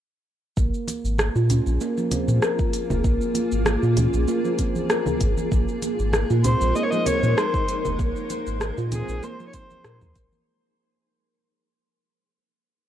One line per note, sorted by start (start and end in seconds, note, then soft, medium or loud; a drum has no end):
0.57 0.71 A#1 medium
0.57 5.48 A#3 medium
0.57 0.67 A#3 medium
0.57 5.48 F4 medium
0.57 10.43 G#4 medium
0.57 kick loud
0.57 cabasa soft
0.74 cabasa soft
0.88 closed hi-hat medium
0.88 muted conga soft
0.88 cabasa medium
1.04 1.30 G#1 medium
1.04 cabasa soft
1.18 cross-stick loud
1.18 muted conga medium
1.18 cabasa soft
1.35 1.61 A#2 medium
1.35 1.49 F4 medium
1.35 cabasa soft
1.50 1.79 C#4 medium
1.50 closed hi-hat medium
1.50 low conga medium
1.50 cabasa medium
1.66 1.78 A#1 medium
1.66 muted conga soft
1.66 cabasa soft
1.81 1.90 A#3 medium
1.81 cabasa soft
1.98 2.10 F3 medium
1.98 cabasa soft
2.11 2.41 C4 medium
2.11 closed hi-hat medium
2.11 low conga medium
2.11 cabasa medium
2.28 2.40 A#2 medium
2.28 muted conga soft
2.28 cabasa soft
2.42 2.58 A#4 medium
2.42 cross-stick medium
2.42 cabasa soft
2.59 kick loud
2.59 cabasa soft
2.73 closed hi-hat medium
2.73 cabasa medium
2.90 3.02 F1 medium
2.90 3.03 A#3 medium
2.90 low conga medium
2.90 cabasa soft
3.04 3.18 A#1 loud
3.04 3.14 A#3 medium
3.04 kick loud
3.04 cabasa soft
3.21 cabasa soft
3.35 closed hi-hat medium
3.35 muted conga medium
3.35 cabasa medium
3.52 3.77 G#1 medium
3.52 cabasa soft
3.66 cross-stick loud
3.66 muted conga medium
3.66 cabasa soft
3.83 4.08 A#2 medium
3.83 3.96 F4 medium
3.83 cabasa soft
3.97 4.27 C#4 medium
3.97 closed hi-hat medium
3.97 high conga medium
3.97 low conga medium
3.97 cabasa medium
4.13 4.26 A#1 loud
4.13 muted conga soft
4.13 cabasa soft
4.28 4.38 A#3 loud
4.28 cabasa soft
4.45 4.58 F3 medium
4.45 cabasa soft
4.58 4.89 C4 medium
4.58 kick medium
4.58 closed hi-hat medium
4.58 muted conga soft
4.58 cabasa medium
4.75 high conga medium
4.75 cabasa soft
4.90 5.06 A#4 medium
4.90 cross-stick loud
4.90 cabasa soft
5.06 high conga medium
5.06 low conga medium
5.06 cabasa soft
5.21 5.35 G#1 medium
5.21 kick loud
5.21 closed hi-hat medium
5.21 cabasa medium
5.37 5.51 A#3 medium
5.37 high conga medium
5.37 cabasa soft
5.52 5.66 A#1 loud
5.52 10.43 G#3 medium
5.52 5.61 A#3 medium
5.52 10.43 D#4 medium
5.52 10.43 A#4 medium
5.52 kick loud
5.52 cabasa soft
5.68 cabasa soft
5.82 closed hi-hat medium
5.82 muted conga soft
5.82 cabasa medium
5.99 6.24 G#1 medium
5.99 cabasa soft
6.13 cross-stick medium
6.13 muted conga medium
6.13 cabasa soft
6.30 6.55 A#2 medium
6.30 6.43 F4 medium
6.30 cabasa soft
6.44 6.74 C4 medium
6.44 6.77 C5 medium
6.44 closed hi-hat medium
6.44 low conga medium
6.44 cabasa medium
6.61 6.73 A#1 medium
6.61 muted conga soft
6.61 cabasa soft
6.75 6.85 A#3 medium
6.75 6.85 D#5 loud
6.75 cabasa soft
6.83 6.92 C#5 medium
6.90 7.05 F3 medium
6.90 7.08 D#5 medium
6.90 cabasa soft
7.06 7.36 C4 medium
7.06 7.39 C#5 medium
7.06 closed hi-hat medium
7.06 low conga medium
7.06 cabasa medium
7.23 7.35 A#2 medium
7.23 muted conga soft
7.23 cabasa soft
7.37 7.53 A#4 medium
7.37 7.85 C5 medium
7.37 cross-stick loud
7.37 cabasa soft
7.54 kick loud
7.54 cabasa soft
7.69 closed hi-hat medium
7.69 cabasa medium
7.85 7.97 F1 medium
7.85 7.98 A#3 medium
7.85 low conga medium
7.85 cabasa soft
7.99 8.13 A#1 loud
7.99 8.09 A#3 medium
7.99 kick loud
7.99 cabasa soft
8.16 cabasa soft
8.30 closed hi-hat medium
8.30 muted conga medium
8.30 cabasa medium
8.47 8.72 G#1 medium
8.47 cabasa soft
8.60 cross-stick medium
8.60 muted conga medium
8.60 cabasa soft
8.78 9.03 A#2 medium
8.78 8.91 F4 medium
8.78 cabasa soft
8.92 9.22 C4 medium
8.92 9.25 G#4 medium
8.92 closed hi-hat medium
8.92 high conga medium
8.92 low conga medium
8.92 cabasa medium
9.09 9.21 A#1 medium
9.09 muted conga soft
9.09 cabasa soft
9.23 9.33 A#3 medium
9.23 9.47 C5 loud
9.23 high conga soft
9.23 cabasa soft
9.40 9.53 F3 medium
9.40 cabasa soft
9.48 9.55 C#5 medium
9.54 9.84 C4 medium
9.54 10.16 C5 loud
9.54 kick medium
9.54 closed hi-hat medium
9.54 muted conga soft
9.54 cabasa medium
9.70 high conga medium
9.70 cabasa soft
9.84 10.03 A#2 medium
9.84 10.01 A#4 medium
9.84 cross-stick medium
9.84 cabasa soft
10.01 10.13 D#2 medium
10.01 high conga medium
10.01 low conga medium
10.01 cabasa soft
10.16 10.29 A#1 loud
10.16 kick loud
10.16 closed hi-hat medium
10.16 cabasa medium
10.32 10.46 A#3 medium
10.32 high conga soft
10.32 cabasa soft